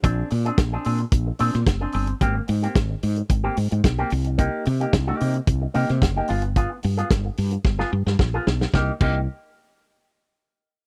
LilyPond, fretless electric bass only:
\new Staff \with { instrumentName = "Fretless electric bass" } { \clef bass \time 4/4 \key c \minor \tempo 4 = 110 bes,,8 bes,8 bes,,8 bes,8 bes,,8 bes,16 bes,16 fis,,8 g,,8 | aes,,8 aes,8 aes,,8 aes,8 aes,,8 aes,16 aes,16 b,,8 c,8~ | c,8 c8 c,8 c8 c,8 c16 c16 fis,,8 g,,8~ | g,,8 g,8 g,,8 g,8 g,,8 g,16 g,16 bes,,8 b,,8 |
c,16 r16 c,8 r2. | }